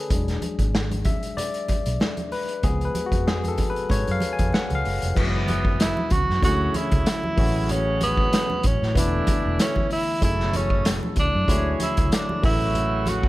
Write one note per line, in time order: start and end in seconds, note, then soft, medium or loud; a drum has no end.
0.00 0.39 G#4 medium
0.00 0.13 A4 medium
0.00 0.13 B4 loud
0.00 0.13 C#5 medium
0.10 0.35 E1 medium
0.10 2.59 F#3 medium
0.10 2.60 G#3 medium
0.10 2.60 D4 medium
0.10 kick loud
0.10 closed hi-hat medium
0.10 muted conga soft
0.10 low conga medium
0.28 snare soft
0.28 closed hi-hat soft
0.42 closed hi-hat medium
0.42 high conga medium
0.59 1.08 G#1 loud
0.59 kick loud
0.59 closed hi-hat medium
0.75 snare loud
0.91 closed hi-hat medium
0.91 high conga medium
1.05 1.38 E5 medium
1.05 kick loud
1.05 closed hi-hat medium
1.05 high conga medium
1.23 closed hi-hat soft
1.37 2.35 D5 medium
1.37 closed hi-hat medium
1.37 low conga medium
1.54 closed hi-hat soft
1.68 muted fingered electric bass stroke soft
1.68 kick medium
1.68 closed hi-hat medium
1.68 high conga medium
1.86 1.98 B1 medium
1.86 closed hi-hat medium
2.00 snare loud
2.00 muted conga soft
2.00 high conga soft
2.17 closed hi-hat soft
2.17 high conga medium
2.32 2.61 B4 medium
2.32 open hi-hat medium
2.32 muted conga soft
2.49 closed hi-hat medium
2.63 2.88 C#2 loud
2.63 3.06 F3 medium
2.63 3.07 G#3 soft
2.63 3.07 B3 medium
2.63 2.85 G#4 medium
2.63 kick loud
2.63 closed hi-hat medium
2.63 muted conga soft
2.63 low conga medium
2.81 3.07 B4 medium
2.81 closed hi-hat soft
2.95 closed hi-hat medium
2.95 muted conga soft
2.95 high conga medium
3.06 3.28 F#4 medium
3.12 3.61 F2 medium
3.12 kick medium
3.12 closed hi-hat medium
3.27 3.37 G#4 medium
3.27 snare loud
3.27 muted conga soft
3.44 closed hi-hat medium
3.44 high conga medium
3.48 3.70 A4 medium
3.58 kick medium
3.58 closed hi-hat medium
3.58 muted conga soft
3.58 high conga medium
3.58 low conga medium
3.70 3.91 B4 medium
3.76 closed hi-hat soft
3.89 4.03 G#2 medium
3.89 4.12 C#5 loud
3.89 kick loud
3.89 closed hi-hat medium
3.89 muted conga soft
3.89 low conga medium
4.07 4.19 F#2 medium
4.07 closed hi-hat soft
4.11 4.21 F5 loud
4.20 closed hi-hat medium
4.20 muted conga soft
4.20 high conga medium
4.33 4.54 G#5 loud
4.39 4.51 F2 medium
4.39 kick loud
4.39 closed hi-hat medium
4.53 4.63 F#5 medium
4.53 snare loud
4.53 muted conga soft
4.53 high conga soft
4.70 4.82 C#2 medium
4.70 closed hi-hat soft
4.70 high conga medium
4.75 5.04 F5 loud
4.85 4.99 F#1 medium
4.85 open hi-hat medium
5.02 5.14 F1 medium
5.02 closed hi-hat medium
5.15 5.93 F#1 loud
5.15 6.10 G#2 medium
5.15 6.40 E3 medium
5.15 6.09 E3 medium
5.15 6.41 F#3 medium
5.15 6.40 G#3 medium
5.15 6.10 B3 medium
5.15 6.41 B3 medium
5.15 6.41 F#4 medium
5.15 kick loud
5.15 crash loud
5.15 muted conga soft
5.15 low conga medium
5.48 closed hi-hat medium
5.48 muted conga soft
5.48 high conga medium
5.65 kick loud
5.80 6.14 E4 loud
5.80 snare loud
5.80 closed hi-hat loud
5.97 high conga medium
6.10 6.25 C#2 medium
6.10 6.43 F#4 loud
6.10 kick loud
6.10 closed hi-hat medium
6.10 muted conga soft
6.10 high conga medium
6.29 6.40 F#2 loud
6.29 snare soft
6.42 6.67 D2 loud
6.42 7.05 A2 medium
6.42 7.05 C#3 medium
6.42 7.37 D3 medium
6.42 7.36 F#3 medium
6.42 7.05 F#3 medium
6.42 7.36 A3 medium
6.42 7.37 C#4 medium
6.42 7.05 C#4 medium
6.42 7.38 E4 medium
6.42 6.78 F#4 loud
6.42 kick loud
6.42 closed hi-hat medium
6.42 muted conga soft
6.42 low conga medium
6.74 7.73 E4 loud
6.74 muted fingered electric bass stroke soft
6.74 closed hi-hat medium
6.74 high conga medium
6.91 7.04 C#2 medium
6.91 kick loud
6.91 closed hi-hat medium
7.06 snare loud
7.06 closed hi-hat loud
7.06 muted conga soft
7.24 high conga medium
7.36 8.25 A1 loud
7.36 8.62 A2 medium
7.36 8.62 C#3 medium
7.36 8.92 E3 medium
7.36 8.92 F#3 medium
7.36 8.62 F#3 medium
7.36 8.93 A3 medium
7.36 8.62 C#4 medium
7.36 8.93 C#4 medium
7.36 8.93 F#4 medium
7.36 kick loud
7.36 open hi-hat medium
7.69 8.02 C#4 loud
7.69 closed hi-hat medium
7.69 muted conga soft
7.69 low conga medium
8.01 8.68 B3 loud
8.01 closed hi-hat medium
8.01 muted conga soft
8.01 high conga medium
8.17 kick medium
8.33 snare loud
8.33 closed hi-hat loud
8.50 high conga medium
8.63 8.78 A1 medium
8.63 8.97 C#4 loud
8.63 kick loud
8.63 closed hi-hat medium
8.63 high conga medium
8.82 8.93 A2 loud
8.82 snare soft
8.94 9.20 E1 loud
8.94 9.89 B2 medium
8.94 10.19 D3 medium
8.94 10.19 E3 medium
8.94 9.89 E3 medium
8.94 10.20 A3 medium
8.94 9.89 A3 medium
8.94 10.20 B3 medium
8.94 9.89 E4 medium
8.94 10.21 E4 medium
8.94 kick loud
8.94 closed hi-hat loud
8.94 muted conga soft
8.94 low conga medium
8.98 9.56 D4 medium
9.27 muted fingered electric bass stroke soft
9.27 kick medium
9.27 closed hi-hat medium
9.27 high conga medium
9.46 9.56 E1 medium
9.59 9.89 C#4 loud
9.59 snare loud
9.59 closed hi-hat loud
9.59 muted conga soft
9.76 kick medium
9.76 high conga medium
9.90 10.21 E4 loud
9.90 open hi-hat medium
10.20 10.99 F#1 loud
10.20 11.45 B2 medium
10.20 11.15 E3 medium
10.20 11.46 F#3 medium
10.20 11.15 A3 medium
10.20 11.46 A3 medium
10.20 11.15 C#4 medium
10.20 10.30 D#4 medium
10.20 10.58 E4 loud
10.20 11.46 G#4 medium
10.20 11.15 A4 medium
10.20 kick loud
10.20 closed hi-hat medium
10.20 muted conga soft
10.20 low conga medium
10.30 11.48 E4 medium
10.40 snare soft
10.53 10.92 C#4 loud
10.53 closed hi-hat medium
10.53 muted conga soft
10.53 high conga medium
10.70 kick loud
10.85 snare loud
10.85 closed hi-hat loud
10.85 muted conga soft
11.03 high conga medium
11.16 11.30 C#2 loud
11.16 11.78 D4 loud
11.16 kick medium
11.16 closed hi-hat medium
11.16 muted conga soft
11.16 high conga medium
11.35 11.46 F#2 loud
11.48 11.73 D2 loud
11.48 12.43 D3 medium
11.48 12.11 E3 medium
11.48 12.41 F#3 medium
11.48 12.42 A3 medium
11.48 12.11 C#4 medium
11.48 12.44 E4 medium
11.48 12.11 G#4 medium
11.48 12.44 C#5 medium
11.48 12.11 C#5 medium
11.48 kick loud
11.48 closed hi-hat medium
11.48 muted conga soft
11.48 low conga medium
11.80 12.15 E4 loud
11.80 muted fingered electric bass stroke soft
11.80 closed hi-hat medium
11.80 muted conga soft
11.80 high conga medium
11.97 12.09 C#2 medium
11.97 kick loud
11.97 closed hi-hat medium
12.12 12.44 D4 medium
12.12 snare loud
12.12 closed hi-hat loud
12.12 muted conga soft
12.29 high conga medium
12.42 13.29 A1 loud
12.42 13.29 C#3 medium
12.42 13.29 E3 medium
12.42 13.29 F#3 medium
12.42 13.29 A3 medium
12.42 13.29 C#4 medium
12.42 13.11 E4 loud
12.42 13.29 F#4 medium
12.42 kick loud
12.42 open hi-hat medium
12.42 muted conga soft
12.75 closed hi-hat medium
12.75 muted conga soft
12.75 low conga medium
13.06 13.29 F#4 loud
13.06 closed hi-hat medium
13.06 high conga medium
13.23 kick medium